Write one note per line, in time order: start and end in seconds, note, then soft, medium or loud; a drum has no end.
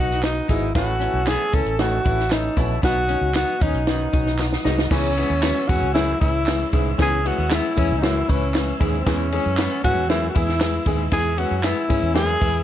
0.00 0.40 B1 medium
0.00 0.13 F#3 medium
0.00 0.13 B3 medium
0.00 0.12 D#4 medium
0.00 0.18 D#4 medium
0.00 0.12 F#4 medium
0.00 0.23 F#4 loud
0.00 0.73 B4 medium
0.00 0.73 D#5 medium
0.00 0.72 F#5 medium
0.00 0.73 D#6 medium
0.11 snare soft
0.23 0.38 F#3 medium
0.23 0.39 B3 medium
0.23 0.48 D#4 medium
0.23 0.38 D#4 medium
0.23 0.39 F#4 medium
0.23 snare loud
0.23 clap medium
0.23 closed hi-hat loud
0.23 tambourine medium
0.48 0.70 G#1 medium
0.48 0.71 G#2 medium
0.48 0.64 F#3 medium
0.48 0.64 B3 medium
0.48 0.70 D#4 medium
0.48 0.64 D#4 medium
0.48 0.74 E4 medium
0.48 0.64 G#4 medium
0.48 kick medium
0.48 closed hi-hat medium
0.48 tambourine medium
0.75 1.07 A1 medium
0.75 0.96 A2 medium
0.75 0.90 E3 loud
0.75 0.90 A3 medium
0.75 0.90 C#4 medium
0.75 0.96 E4 medium
0.75 0.90 E4 loud
0.75 1.29 F#4 loud
0.75 2.82 C#5 medium
0.75 2.82 E5 medium
0.75 2.81 A5 medium
0.75 2.82 E6 medium
0.75 kick loud
0.75 snare loud
0.75 closed hi-hat medium
0.75 tambourine medium
0.99 1.16 E3 medium
0.99 1.16 A3 medium
0.99 1.21 C#4 medium
0.99 1.16 C#4 medium
0.99 1.16 E4 medium
0.99 closed hi-hat medium
0.99 tambourine soft
1.13 1.35 B1 medium
1.26 1.42 E3 medium
1.26 1.42 A3 medium
1.26 1.47 B3 medium
1.26 1.42 C#4 medium
1.26 1.42 E4 medium
1.26 1.56 G#4 loud
1.26 snare loud
1.26 clap loud
1.26 closed hi-hat medium
1.26 tambourine loud
1.52 1.64 C#2 loud
1.52 1.68 E3 medium
1.52 1.68 A3 medium
1.52 1.74 C#4 medium
1.52 1.68 C#4 medium
1.52 1.68 E4 medium
1.52 1.82 A4 medium
1.52 kick medium
1.52 closed hi-hat medium
1.52 tambourine medium
1.66 1.98 A1 medium
1.66 closed hi-hat medium
1.79 2.00 A2 medium
1.79 1.94 E3 medium
1.79 1.94 A3 medium
1.79 1.94 C#4 medium
1.79 1.94 D#4 loud
1.79 2.33 F#4 medium
1.79 snare loud
1.79 closed hi-hat medium
2.05 2.48 A1 medium
2.05 2.20 E3 medium
2.05 2.20 A3 medium
2.05 2.20 C#4 medium
2.05 2.26 E4 medium
2.05 2.20 E4 medium
2.05 kick medium
2.05 closed hi-hat medium
2.05 tambourine medium
2.19 snare soft
2.31 2.46 E3 medium
2.31 2.46 A3 medium
2.31 2.46 C#4 medium
2.31 2.58 D#4 medium
2.31 2.46 E4 medium
2.31 snare loud
2.31 clap medium
2.31 closed hi-hat loud
2.31 tambourine medium
2.57 2.78 A#1 medium
2.57 2.78 B2 medium
2.57 2.72 E3 medium
2.57 2.72 A3 medium
2.57 2.72 C#4 medium
2.57 2.72 E4 medium
2.57 2.78 E4 medium
2.57 kick medium
2.57 closed hi-hat medium
2.57 tambourine medium
2.82 3.15 B1 loud
2.82 3.04 B2 medium
2.82 2.98 D#3 loud
2.82 2.98 F#3 medium
2.82 3.03 B3 medium
2.82 2.98 B3 medium
2.82 2.98 D#4 loud
2.82 3.32 F#4 loud
2.82 4.90 B4 medium
2.82 4.90 D#5 medium
2.82 4.90 F#5 medium
2.82 4.90 D#6 medium
2.82 kick loud
2.82 snare loud
2.82 closed hi-hat medium
2.82 tambourine medium
3.08 3.24 D#3 medium
3.08 3.24 F#3 medium
3.08 3.24 B3 medium
3.08 3.29 C#4 medium
3.08 3.24 F#4 medium
3.08 closed hi-hat medium
3.08 tambourine soft
3.21 3.43 C#2 medium
3.35 3.49 D#3 medium
3.35 3.50 F#3 medium
3.35 3.56 B3 medium
3.35 3.50 B3 medium
3.35 3.50 D#4 medium
3.35 3.64 F#4 loud
3.35 snare loud
3.35 clap loud
3.35 closed hi-hat loud
3.35 tambourine loud
3.60 3.72 D#2 medium
3.60 3.76 D#3 medium
3.60 3.76 F#3 medium
3.60 3.76 B3 medium
3.60 3.81 C#4 medium
3.60 3.76 C#4 medium
3.60 3.88 D#4 loud
3.60 kick medium
3.60 closed hi-hat medium
3.60 tambourine medium
3.74 4.06 B1 medium
3.74 closed hi-hat soft
3.87 4.08 F#2 medium
3.87 4.02 D#3 medium
3.87 4.02 F#3 medium
3.87 4.02 B3 medium
3.87 4.02 D#4 loud
3.87 4.62 D#4 medium
3.87 snare loud
3.87 closed hi-hat medium
4.13 4.55 B1 medium
4.13 4.28 D#3 medium
4.13 4.28 F#3 medium
4.13 4.28 B3 medium
4.13 4.28 C#4 medium
4.13 4.34 D#4 medium
4.13 kick medium
4.13 closed hi-hat medium
4.13 tambourine medium
4.27 snare soft
4.39 4.54 D#3 medium
4.39 4.54 F#3 medium
4.39 4.54 B3 medium
4.39 4.54 F#4 medium
4.39 snare medium
4.39 clap medium
4.39 tambourine medium
4.53 snare medium
4.65 4.86 C2 medium
4.65 4.86 G#2 medium
4.65 4.80 D#3 loud
4.65 4.80 F#3 medium
4.65 4.80 B3 medium
4.65 4.86 D#4 medium
4.65 4.80 D#4 loud
4.65 snare medium
4.65 tambourine soft
4.79 snare loud
4.91 5.23 C#2 loud
4.91 5.12 E2 medium
4.91 5.06 E3 medium
4.91 5.06 G#3 medium
4.91 5.06 C#4 medium
4.91 5.12 C#4 medium
4.91 5.69 C#4 loud
4.91 5.06 E4 medium
4.91 5.06 G#4 loud
4.91 9.03 C#5 medium
4.91 12.63 E5 medium
4.91 12.63 G#5 medium
4.91 12.63 E6 medium
4.91 kick loud
4.91 snare loud
4.91 crash medium
4.91 tambourine medium
5.17 5.32 E3 medium
5.17 5.32 G#3 medium
5.17 5.38 B3 medium
5.17 5.32 C#4 medium
5.17 5.32 E4 medium
5.17 5.32 G#4 medium
5.17 ride medium
5.17 tambourine soft
5.30 5.51 D#2 medium
5.42 5.58 E3 medium
5.42 5.58 G#3 medium
5.42 5.64 B3 medium
5.42 5.58 C#4 medium
5.42 5.58 E4 medium
5.42 5.58 F#4 medium
5.42 snare loud
5.42 clap loud
5.42 ride medium
5.42 tambourine loud
5.68 5.83 E2 loud
5.68 5.83 E3 medium
5.68 5.84 G#3 medium
5.68 5.83 C#4 medium
5.68 5.90 C#4 medium
5.68 5.84 E4 medium
5.68 5.93 F#4 loud
5.68 5.83 G#4 medium
5.68 kick loud
5.68 ride medium
5.68 tambourine medium
5.81 6.13 C#2 medium
5.94 6.16 F#2 medium
5.94 6.09 E3 medium
5.94 6.09 G#3 medium
5.94 6.09 C#4 medium
5.94 6.19 E4 loud
5.94 6.09 E4 medium
5.94 6.09 G#4 loud
5.94 snare loud
5.94 ride medium
5.94 tambourine soft
6.21 6.63 C#2 medium
6.21 6.36 E3 medium
6.21 6.36 G#3 medium
6.21 6.36 C#4 medium
6.21 6.69 E4 medium
6.21 6.42 E4 medium
6.21 6.36 E4 medium
6.21 6.36 G#4 medium
6.21 kick loud
6.21 ride medium
6.21 tambourine medium
6.46 6.62 E3 medium
6.46 6.62 G#3 medium
6.46 6.62 C#4 medium
6.46 6.62 E4 medium
6.46 6.62 G#4 medium
6.46 snare loud
6.46 clap medium
6.46 ride medium
6.46 tambourine medium
6.72 6.94 C2 medium
6.72 6.93 G#2 medium
6.72 6.87 E3 medium
6.72 6.87 G#3 medium
6.72 6.87 C#4 medium
6.72 6.94 E4 medium
6.72 6.87 E4 medium
6.72 6.87 G#4 medium
6.72 kick medium
6.72 ride medium
6.72 tambourine medium
6.98 7.30 C#2 loud
6.98 7.19 E2 medium
6.98 7.13 E3 medium
6.98 7.13 G#3 medium
6.98 7.13 C#4 medium
6.98 7.20 C#4 medium
6.98 7.13 E4 medium
6.98 7.13 G#4 loud
6.98 7.29 G#4 loud
6.98 kick loud
6.98 snare loud
6.98 ride medium
6.98 tambourine medium
7.25 7.39 E3 medium
7.25 7.39 G#3 medium
7.25 7.46 B3 medium
7.25 7.39 C#4 medium
7.25 7.39 E4 medium
7.25 7.55 F#4 loud
7.25 7.39 G#4 medium
7.25 ride medium
7.25 tambourine soft
7.38 7.59 D#2 medium
7.50 7.65 E3 medium
7.50 7.65 G#3 medium
7.50 7.72 B3 loud
7.50 7.65 C#4 medium
7.50 7.65 E4 medium
7.50 7.97 E4 loud
7.50 7.65 G#4 medium
7.50 snare loud
7.50 clap loud
7.50 ride medium
7.50 tambourine loud
7.76 7.92 E2 loud
7.76 7.91 E3 medium
7.76 7.91 G#3 medium
7.76 7.91 C#4 medium
7.76 7.98 C#4 medium
7.76 7.91 E4 medium
7.76 7.91 G#4 medium
7.76 kick medium
7.76 ride medium
7.76 tambourine medium
7.91 8.22 C#2 medium
7.98 8.06 D#4 medium
8.02 8.23 F#2 medium
8.02 8.17 E3 medium
8.02 8.17 G#3 medium
8.02 8.17 C#4 medium
8.02 8.17 E4 medium
8.02 8.31 E4 loud
8.02 8.17 F#4 medium
8.02 snare loud
8.02 ride medium
8.02 tambourine soft
8.28 8.71 C#2 medium
8.28 8.43 E3 medium
8.28 8.43 G#3 medium
8.28 8.43 C#4 medium
8.28 8.81 C#4 medium
8.28 8.43 E4 medium
8.28 8.50 E4 medium
8.28 8.43 B4 medium
8.28 kick medium
8.28 ride medium
8.28 tambourine medium
8.54 8.69 E3 medium
8.54 8.69 G#3 medium
8.54 8.69 C#4 medium
8.54 8.69 E4 medium
8.54 8.69 B4 medium
8.54 snare loud
8.54 clap medium
8.54 ride medium
8.54 tambourine medium
8.80 9.01 D#2 medium
8.80 9.01 G#2 medium
8.80 8.94 E3 medium
8.80 8.94 G#3 medium
8.80 8.95 C#4 medium
8.80 8.95 E4 medium
8.80 9.01 E4 medium
8.80 8.95 G#4 medium
8.80 kick medium
8.80 ride medium
8.80 tambourine medium
8.99 9.09 C4 medium
9.06 9.38 E2 loud
9.06 9.27 E2 medium
9.06 9.21 E3 loud
9.06 9.21 G#3 medium
9.06 9.21 B3 medium
9.06 9.84 C#4 loud
9.06 9.21 E4 medium
9.06 9.27 E4 medium
9.06 9.21 G#4 loud
9.06 12.63 B4 medium
9.06 kick loud
9.06 snare loud
9.06 ride medium
9.06 tambourine medium
9.32 9.47 E3 medium
9.32 9.47 G#3 medium
9.32 9.47 B3 medium
9.32 9.53 C#4 medium
9.32 9.47 E4 medium
9.32 9.47 G#4 medium
9.32 ride medium
9.46 9.66 F#2 medium
9.57 9.73 E3 medium
9.57 9.73 G#3 medium
9.57 9.73 B3 medium
9.57 9.79 B3 medium
9.57 9.73 E4 medium
9.57 9.73 B4 medium
9.57 snare loud
9.57 clap loud
9.57 ride medium
9.57 tambourine loud
9.84 9.97 G#2 loud
9.84 9.98 E3 medium
9.84 9.99 G#3 medium
9.84 9.99 B3 medium
9.84 10.04 C#4 medium
9.84 9.98 E4 medium
9.84 10.08 F#4 loud
9.84 9.98 G#4 medium
9.84 kick loud
9.84 ride medium
9.84 tambourine medium
9.97 10.28 E2 medium
10.09 10.30 F#2 medium
10.09 10.24 E3 loud
10.09 10.24 G#3 medium
10.09 10.24 B3 medium
10.09 10.27 E4 loud
10.09 10.24 E4 medium
10.09 10.24 G#4 loud
10.09 snare loud
10.09 ride medium
10.29 10.38 F#4 medium
10.35 10.77 E2 medium
10.35 10.50 E3 medium
10.35 10.50 G#3 medium
10.35 10.50 B3 medium
10.35 10.56 E4 medium
10.35 10.50 E4 medium
10.35 10.87 E4 loud
10.35 10.50 G#4 medium
10.35 kick medium
10.35 ride medium
10.35 tambourine medium
10.49 snare soft
10.61 10.76 E3 medium
10.61 10.76 G#3 medium
10.61 10.76 B3 medium
10.61 10.76 E4 medium
10.61 10.76 G#4 medium
10.61 snare loud
10.61 clap medium
10.61 ride medium
10.61 tambourine medium
10.86 11.07 D#2 loud
10.86 11.08 G#2 medium
10.86 11.01 E3 medium
10.86 11.01 G#3 medium
10.86 11.01 B3 medium
10.86 11.07 E4 medium
10.86 11.01 E4 medium
10.86 11.01 G#4 medium
10.86 kick medium
10.86 ride medium
10.86 tambourine medium
11.12 11.44 E2 loud
11.12 11.33 E2 medium
11.12 11.27 E3 medium
11.12 11.27 G#3 medium
11.12 11.27 B3 medium
11.12 11.33 E4 medium
11.12 11.27 E4 medium
11.12 11.27 G#4 loud
11.12 11.40 G#4 loud
11.12 kick loud
11.12 snare loud
11.12 ride medium
11.12 tambourine medium
11.37 11.53 E3 medium
11.37 11.53 G#3 medium
11.37 11.53 B3 medium
11.37 11.59 C#4 medium
11.37 11.53 E4 medium
11.37 11.57 F#4 loud
11.37 11.53 G#4 medium
11.37 ride medium
11.51 11.72 F#2 medium
11.57 11.65 F#4 medium
11.63 11.78 E3 medium
11.63 11.78 G#3 medium
11.63 11.84 B3 loud
11.63 11.78 B3 medium
11.63 12.15 E4 loud
11.63 11.78 E4 medium
11.63 11.78 G#4 medium
11.63 snare loud
11.63 clap loud
11.63 ride medium
11.63 tambourine loud
11.89 12.01 G#2 medium
11.89 12.04 E3 medium
11.89 12.04 G#3 medium
11.89 12.04 B3 medium
11.89 12.11 C#4 medium
11.89 12.04 E4 medium
11.89 12.04 G#4 medium
11.89 kick medium
11.89 ride medium
11.89 tambourine medium
12.02 12.34 E2 medium
12.14 12.36 F#2 medium
12.14 12.29 E3 medium
12.14 12.29 G#3 medium
12.14 12.29 B3 medium
12.14 12.29 E4 medium
12.14 12.29 G#4 loud
12.14 12.63 G#4 loud
12.14 snare loud
12.14 ride medium
12.40 12.63 E2 medium
12.40 12.55 E3 medium
12.40 12.55 G#3 medium
12.40 12.55 B3 medium
12.40 12.55 E4 medium
12.40 12.62 E4 medium
12.40 12.56 G#4 medium
12.40 kick medium
12.40 ride medium
12.40 tambourine medium